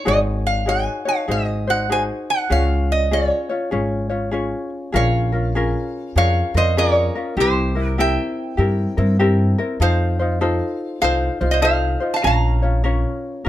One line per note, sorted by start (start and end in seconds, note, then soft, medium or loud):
0.05 0.86 G#1 medium
0.05 0.66 D#4 medium
0.05 0.67 F#4 medium
0.05 0.65 G#4 medium
0.05 0.67 C#5 medium
0.05 0.18 D#5 medium
0.47 0.69 F5 medium
0.66 1.06 D#4 medium
0.66 1.05 F#4 medium
0.66 1.06 G#4 soft
0.66 1.04 C#5 medium
0.66 1.08 G#5 medium
1.05 1.27 D#4 soft
1.05 1.28 F#4 soft
1.05 1.28 C#5 medium
1.05 1.30 F5 medium
1.28 2.08 G#1 medium
1.28 1.67 D#4 medium
1.28 1.68 F#4 medium
1.28 1.67 G#4 medium
1.28 1.66 C5 medium
1.28 1.70 D#5 medium
1.67 1.89 D#4 soft
1.67 1.90 F#4 soft
1.67 1.89 C5 medium
1.67 1.91 F#5 medium
1.90 2.50 D#4 medium
1.90 2.50 F#4 medium
1.90 2.49 G#4 soft
1.90 2.51 C5 medium
1.90 2.02 G#5 medium
2.30 2.50 F#5 medium
2.50 3.30 C#2 loud
2.50 3.11 C#4 medium
2.50 3.12 F4 medium
2.50 3.11 G#4 medium
2.50 3.13 C#5 medium
2.50 2.91 F5 medium
2.92 3.13 D#5 medium
3.11 3.50 C#4 medium
3.11 3.50 F4 medium
3.11 3.50 G#4 medium
3.11 3.48 C#5 medium
3.11 4.69 C#5 medium
3.49 3.71 C#4 soft
3.49 3.71 F4 soft
3.49 3.72 C#5 medium
3.71 4.51 G#1 medium
3.71 4.10 C#4 medium
3.71 4.09 F4 medium
3.71 4.10 G#4 medium
3.71 4.08 C#5 medium
4.10 4.31 C#4 soft
4.10 4.31 F4 soft
4.10 4.32 C#5 soft
4.31 4.93 C#4 medium
4.31 4.93 F4 medium
4.31 4.92 G#4 medium
4.31 4.94 C#5 medium
4.92 5.73 A#1 loud
4.92 5.33 C#4 medium
4.92 5.33 F4 medium
4.92 5.32 G#4 medium
4.92 5.31 A#4 medium
4.92 6.16 F5 medium
4.97 6.13 C#5 medium
5.32 5.55 C#4 soft
5.32 5.55 F4 soft
5.32 5.54 A#4 medium
5.55 6.16 C#4 medium
5.55 6.16 F4 medium
5.55 6.15 G#4 medium
5.55 6.18 A#4 medium
6.16 6.41 F2 medium
6.16 6.55 C#4 medium
6.16 6.55 F4 medium
6.16 6.55 G#4 medium
6.16 6.54 A#4 medium
6.16 6.53 C#5 medium
6.16 6.57 F5 medium
6.54 7.08 F2 medium
6.54 6.76 C#4 soft
6.54 6.77 F4 soft
6.54 6.77 A#4 medium
6.54 6.76 C5 medium
6.54 6.78 D#5 medium
6.77 7.16 C#4 medium
6.77 7.15 F4 medium
6.77 7.16 G#4 medium
6.77 7.34 A#4 medium
6.77 7.14 A#4 medium
6.77 7.40 C#5 medium
7.15 7.37 C#4 soft
7.15 7.37 F4 soft
7.15 7.37 A#4 medium
7.37 8.16 C2 loud
7.37 7.76 C4 medium
7.37 7.75 E4 medium
7.37 7.76 G4 medium
7.37 7.96 G4 medium
7.37 7.74 A#4 medium
7.41 7.88 C5 medium
7.75 7.97 C4 soft
7.75 7.98 E4 soft
7.75 7.97 A#4 medium
7.88 8.02 A#4 medium
7.98 8.58 C4 medium
7.98 8.58 E4 medium
7.98 8.56 G4 medium
7.98 8.59 A#4 medium
7.98 9.17 E5 medium
7.98 9.17 G5 medium
8.57 8.84 G2 medium
8.57 8.97 C4 medium
8.57 8.97 E4 medium
8.57 8.97 G4 medium
8.57 8.96 A#4 medium
8.97 9.52 G2 loud
8.97 9.19 C4 medium
8.97 9.19 E4 medium
8.97 9.19 A#4 medium
9.19 9.59 C4 medium
9.19 9.58 E4 medium
9.19 9.58 G4 medium
9.19 9.57 A#4 medium
9.58 9.81 C4 medium
9.58 9.81 E4 medium
9.58 9.80 A#4 medium
9.80 10.59 F2 medium
9.80 10.20 D#4 medium
9.80 10.19 F4 medium
9.80 10.19 A4 medium
9.80 10.18 C5 medium
9.80 10.99 C5 medium
9.80 11.00 F5 medium
10.19 10.40 D#4 soft
10.19 10.40 F4 soft
10.19 10.40 C5 medium
10.41 11.01 D#4 medium
10.41 11.02 F4 medium
10.41 11.00 A4 medium
10.41 11.02 C5 medium
11.01 11.28 C2 medium
11.01 11.41 D#4 medium
11.01 11.40 F4 medium
11.01 11.41 A4 medium
11.01 11.40 C5 medium
11.01 11.50 C5 medium
11.01 11.51 F5 medium
11.41 11.95 C2 medium
11.41 11.61 D#4 soft
11.41 11.62 F4 medium
11.41 11.61 C5 medium
11.51 11.63 C5 medium
11.51 11.62 D#5 medium
11.62 12.01 D#4 medium
11.62 12.00 F4 medium
11.62 12.01 A4 medium
11.62 11.99 C5 medium
11.62 12.10 C5 medium
11.62 12.14 F5 medium
12.00 12.23 D#4 soft
12.00 12.23 F4 medium
12.00 12.23 C5 medium
12.14 12.25 F5 medium
12.14 12.25 A5 medium
12.23 13.03 A#1 loud
12.23 12.63 C#4 medium
12.23 12.62 F4 medium
12.23 12.63 A#4 medium
12.23 12.61 C#5 medium
12.23 13.49 F5 medium
12.23 13.49 A#5 medium
12.62 12.83 C#4 soft
12.62 12.84 F4 soft
12.62 12.84 C#5 soft
12.84 13.45 C#4 medium
12.84 13.46 F4 medium
12.84 13.43 A#4 medium
12.84 13.47 C#5 medium
13.45 13.49 C#4 medium
13.45 13.49 A#4 medium